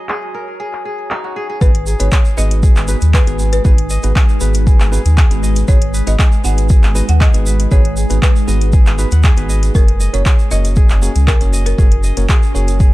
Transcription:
Already playing: ambient pad F#4 C#5 G#5 A#5, kora D#5
0.09 kora G#4, clap
0.34 kora A#4
0.60 kora G#4
0.73 clap
0.85 kora G#4
1.11 kora D#4, clap
1.24 kora F#4
1.36 kora G#4
1.50 kora G#4
1.61 analog synth bass G#1, ambient pad G#3 D#4 G#4 B4, tine electric piano B3 D#4 F#4 G#4 B4, kora G#4, marimba B4, kick, shaker
1.75 closed hi-hat
1.87 kora G#4, shaker
2.00 analog synth bass G#1, tine electric piano B3 D#4 F#4 G#4 B4, marimba C#5, closed hi-hat, shaker
2.12 kora G#4, kick, clap, shaker
2.25 shaker
2.37 analog synth bass G#1, tine electric piano B3 D#4 F#4 G#4 B4, marimba D#5, kora D#5, shaker
2.51 closed hi-hat, shaker
2.63 kora G#4, kick, shaker
2.76 analog synth bass G#1, clap, shaker
2.88 tine electric piano B3 D#4 F#4 G#4 B4, kora B4, shaker
3.01 analog synth bass D#2, closed hi-hat, shaker
3.14 kora G#4, marimba B4, kick, clap, shaker
3.27 analog synth bass G#1, tine electric piano B3 D#4 F#4 G#4 B4, closed hi-hat, shaker
3.39 kora G#4, shaker
3.53 marimba B4, closed hi-hat, shaker
3.65 analog synth bass G#1, tine electric piano B3 D#4 F#4 G#4 B4, kora G#4, kick, shaker
3.78 closed hi-hat
3.90 kora D#5, shaker
4.03 analog synth bass G#1, tine electric piano B3 D#4 F#4 G#4 B4, closed hi-hat, shaker
4.16 kora G#4, kick, clap, shaker
4.29 shaker
4.41 analog synth bass G#1, tine electric piano B3 D#4 F#4 G#4 B4, kora B4, shaker
4.54 closed hi-hat, shaker
4.67 kora G#4, kick, shaker
4.80 analog synth bass G#1, clap, shaker
4.92 tine electric piano B3 D#4 F#4 G#4 B4, kora G#4, shaker
5.05 analog synth bass D#2, closed hi-hat, shaker
5.17 kora G#4, kick, clap, shaker
5.31 analog synth bass G#1, tine electric piano B3 D#4 F#4 G#4 B4, closed hi-hat, shaker
5.43 kora D#5, shaker
5.56 closed hi-hat, shaker
5.68 analog synth bass G#1, tine electric piano B3 D#4 F#4 G#4 B4, kora G#4, marimba C#5, kick, shaker
5.82 closed hi-hat
5.94 kora B4, shaker
6.07 analog synth bass G#1, tine electric piano B3 D#4 F#4 G#4 B4, marimba D#5, closed hi-hat, shaker
6.19 kora G#4, kick, clap, shaker
6.32 shaker
6.44 analog synth bass G#1, tine electric piano B3 D#4 F#4 G#4 B4, kora G#4, marimba F#5, shaker
6.58 closed hi-hat, shaker
6.69 kora G#4, kick, shaker
6.83 analog synth bass G#1, clap, shaker
6.95 tine electric piano B3 D#4 F#4 G#4 B4, kora D#5, shaker
7.09 analog synth bass D#2, marimba F#5, closed hi-hat, shaker
7.21 kora G#4, marimba D#5, kick, clap, shaker
7.33 analog synth bass G#1, tine electric piano B3 D#4 F#4 G#4 B4, closed hi-hat, shaker
7.46 kora B4, shaker
7.60 closed hi-hat, shaker
7.71 analog synth bass G#1, tine electric piano B3 D#4 F#4 G#4 B4, kora G#4, marimba C#5, kick, shaker
7.85 closed hi-hat
7.97 kora G#4, shaker
8.10 analog synth bass G#1, tine electric piano B3 D#4 F#4 G#4 B4, closed hi-hat, shaker
8.22 kora G#4, marimba B4, kick, clap, shaker
8.36 shaker
8.47 analog synth bass G#1, tine electric piano B3 D#4 F#4 G#4 B4, kora D#5, shaker
8.61 closed hi-hat, shaker
8.73 kora G#4, kick, shaker
8.86 analog synth bass G#1, clap, shaker
8.98 tine electric piano B3 D#4 F#4 G#4 B4, kora B4, shaker
9.11 analog synth bass D#2, kora F#5, closed hi-hat, shaker
9.23 kora G#4, kick, clap, shaker
9.37 analog synth bass G#1, tine electric piano B3 D#4 F#4 G#4 B4, kora B4, closed hi-hat, shaker
9.49 kora D#5, shaker
9.63 closed hi-hat, shaker
9.75 analog synth bass F#1, tine electric piano A#3 C#4 F#4 A#4 C#5, ambient pad C#4 F#4 A#4, kora G#4, marimba A#4, kick, shaker
9.88 closed hi-hat
10.00 kora D#5, shaker
10.14 analog synth bass F#1, tine electric piano A#3 C#4 F#4 A#4 C#5, marimba C#5, closed hi-hat, shaker
10.26 kora G#4, kick, clap, shaker
10.39 shaker
10.51 analog synth bass F#1, tine electric piano A#3 C#4 F#4 A#4 C#5, kora D#5, marimba D#5, shaker
10.65 closed hi-hat, shaker
10.76 kora G#4, kick, shaker
10.89 analog synth bass F#1, clap, shaker
11.02 tine electric piano A#3 C#4 F#4 A#4 C#5, kora G#4, shaker
11.15 analog synth bass C#2, closed hi-hat, shaker
11.27 kora G#4, marimba A#4, kick, clap, shaker
11.41 analog synth bass F#1, tine electric piano A#3 C#4 F#4 A#4 C#5, closed hi-hat, shaker
11.53 kora D#5, shaker
11.66 marimba A#4, closed hi-hat, shaker
11.78 analog synth bass F#1, tine electric piano A#3 C#4 F#4 A#4 C#5, kora G#4, kick, shaker
11.92 closed hi-hat
12.03 kora D#5, shaker
12.17 analog synth bass F#1, tine electric piano A#3 C#4 F#4 A#4 C#5, closed hi-hat, shaker
12.29 kora G#4, kick, clap, shaker
12.43 shaker
12.55 analog synth bass F#1, tine electric piano A#3 C#4 F#4 A#4 C#5, kora G#4, shaker
12.68 closed hi-hat, shaker
12.80 kora G#4, kick, shaker

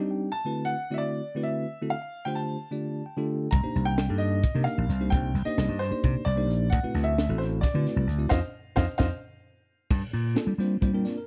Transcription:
0.00 tine electric piano G3 C4 D4 D#4 G4
0.11 tine electric piano G5
0.32 grand piano A5
0.45 tine electric piano D3 A3 C4 E4 F#4 B4
0.65 grand piano F#5
0.90 tine electric piano D3 A3 C4 E4 F#4 D5, grand piano E5
0.98 grand piano D5
1.35 tine electric piano D3 A3 C4 E4 F#4 B4
1.43 grand piano E5
1.82 tine electric piano D3 A3 C4 E4 F#4 A4
1.90 grand piano F5
2.25 tine electric piano D3 A3 D4 F4 G4 C5, grand piano G5
2.35 grand piano A5
2.71 tine electric piano D3 A3 D4 F4 G4 D5
3.06 tine electric piano G5
3.17 tine electric piano D3 A3 D4 F4 G4 A4
3.51 slap bass C2, grand piano A#5, kick, closed hi-hat
3.63 tine electric piano A#3 D4 D#4 G4 C5, muted slap bass stroke
3.76 slap bass C2, closed hi-hat
3.85 grand piano G5
3.98 snare, closed hi-hat
4.08 slap bass G2, tine electric piano A#3 D4 D#4 G4 A4
4.18 grand piano D#5, closed hi-hat
4.43 muted slap bass stroke, kick, closed hi-hat
4.54 slap bass C3, tine electric piano A#3 D4 D#4 G4 A#4
4.64 grand piano F5, closed hi-hat
4.78 slap bass A#1
4.89 slap bass C2, closed hi-hat
5.00 tine electric piano A#3 D4 D#4 G4 C5
5.10 slap bass C2, grand piano G5, kick, closed hi-hat
5.34 slap bass C2, closed hi-hat
5.45 tine electric piano A#3 D4 D#4 G4 C5, grand piano D#5, muted slap bass stroke
5.58 slap bass C2, snare, closed hi-hat
5.69 slap bass G2
5.79 grand piano C5, snare, closed hi-hat
5.91 tine electric piano A#3 D4 D#4 G4 D5, muted slap bass stroke
6.04 slap bass C3, kick, closed hi-hat
6.15 muted slap bass stroke
6.25 slap bass C2, grand piano D5, closed hi-hat
6.36 tine electric piano A#3 D4 D#4 G4 C5
6.48 slap bass A#1, closed hi-hat
6.70 slap bass D2, grand piano F#5, kick, closed hi-hat
6.83 tine electric piano A3 C4 E4 F#4 B4, muted slap bass stroke
6.94 slap bass D2, snare, closed hi-hat
7.04 grand piano E5
7.18 snare, closed hi-hat
7.29 slap bass A1, tine electric piano A3 C4 E4 F#4 A4
7.38 grand piano C5, snare, closed hi-hat
7.61 grand piano D5, muted slap bass stroke, kick, snare, closed hi-hat
7.74 slap bass D3, tine electric piano A3 C4 E4 F#4 B4
7.87 snare, closed hi-hat
7.96 slap bass C2
8.07 slap bass D2, closed hi-hat
8.19 tine electric piano A3 C4 E4 F#4 D5
8.29 slap bass F2, tine electric piano C4 D#4 F4, grand piano C5 D#5 F5, kick, snare
8.76 slap bass F2, tine electric piano C4 D#4 F4, grand piano C5 D#5 F5, kick, snare
8.98 slap bass F2, tine electric piano C4 D#4 F4, grand piano C5 D#5 F5, kick, snare
9.91 slap bass G2, kick, crash
10.13 slap bass A#2, closed hi-hat
10.35 tine electric piano A#3 C4 D4 F4 A4, snare, closed hi-hat
10.47 slap bass G3
10.58 slap bass G3, tine electric piano A#3 C4 D4 F4 C5, snare, closed hi-hat
10.81 slap bass G3, tine electric piano A#3 C4 D4 F4 C5, kick, closed hi-hat
10.94 tine electric piano A#3 C4 D4 F4 A#4 G5
11.05 tine electric piano D5, snare, closed hi-hat
11.17 tine electric piano A#4

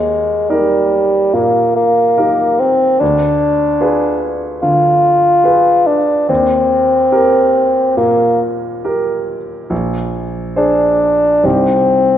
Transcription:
Already playing: grand piano D#2, bassoon G#3
0.50 bassoon G3, grand piano D#4 G4 A#4
1.34 grand piano A#2, bassoon A#3
1.76 bassoon A#3
2.17 grand piano D#4 G4 A#4
2.60 bassoon C4
3.00 grand piano D2, bassoon D4
3.81 grand piano F4 G#4 B4
4.63 grand piano D3, bassoon F4
5.44 grand piano F4 G#4 B4
5.87 bassoon D4
6.29 grand piano D#2, bassoon C4
7.12 grand piano G4 A#4
7.97 grand piano A#2, bassoon A#3
8.84 grand piano G4 A#4
9.70 grand piano A#1
10.56 bassoon D4, grand piano G#4 C5
11.43 grand piano C2 D#4 G4 C5, bassoon C4

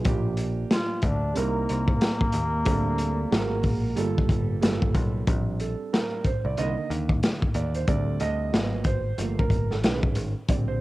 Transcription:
0.03 picked electric bass A#1, grand piano F3 A#3 D4 G4, kick, closed hi-hat
0.37 closed hi-hat
0.71 trombone F4, snare, closed hi-hat
1.02 picked electric bass D2, trombone D4, kick, closed hi-hat
1.34 picked electric bass C2, grand piano G3 C4 D#4 A#4, closed hi-hat
1.39 trombone A#3
1.69 picked electric bass C2, closed hi-hat
1.88 kick
2.01 snare, closed hi-hat
2.21 kick
2.32 picked electric bass D#2, closed hi-hat
2.65 picked electric bass D2, grand piano G3 C4 D4 A4, kick, closed hi-hat
2.98 closed hi-hat
3.31 picked electric bass G#1, grand piano G#3 A#3 F#4 G#4, snare, closed hi-hat
3.39 grand piano A#4
3.63 picked electric bass A#1, kick, open hi-hat
3.96 picked electric bass G1, grand piano G3 A#3 F4 A4, closed hi-hat
4.18 kick
4.29 picked electric bass G1, kick, closed hi-hat
4.61 picked electric bass G1, grand piano G3 A#3 F4 A4, snare, closed hi-hat
4.82 kick
4.94 picked electric bass B1, kick, closed hi-hat
5.27 picked electric bass A#1, grand piano G3 C4 D4, kick, closed hi-hat
5.60 grand piano A4, closed hi-hat
5.93 grand piano A#4, snare, closed hi-hat
6.24 grand piano C5, kick, closed hi-hat
6.45 picked electric bass C2, grand piano D5
6.57 picked electric bass C2, grand piano D3 D#3 A#3 D#5, closed hi-hat
6.77 muted picked electric bass stroke
6.90 picked electric bass D#2, closed hi-hat
7.09 kick
7.23 snare, closed hi-hat
7.42 kick
7.54 picked electric bass D#2, grand piano D5, closed hi-hat
7.75 grand piano C5, closed hi-hat
7.87 picked electric bass D2, grand piano G3 A3 C4 D5, kick, closed hi-hat
8.20 picked electric bass D2, grand piano D#5, closed hi-hat
8.52 picked electric bass G#1, grand piano F#3 A#3 B3, snare, closed hi-hat
8.84 grand piano C5, kick, closed hi-hat
9.18 picked electric bass G1, grand piano F3 A3 A#3, closed hi-hat
9.39 grand piano A#4, kick
9.50 kick, closed hi-hat
9.71 grand piano A4, snare
9.83 picked electric bass B1, grand piano D#3 G#3 C#4 B4, snare, closed hi-hat
10.03 kick
10.15 picked electric bass G#1, closed hi-hat
10.48 picked electric bass A#1, grand piano D3 G3 C4 D5, kick, closed hi-hat
10.68 grand piano C5

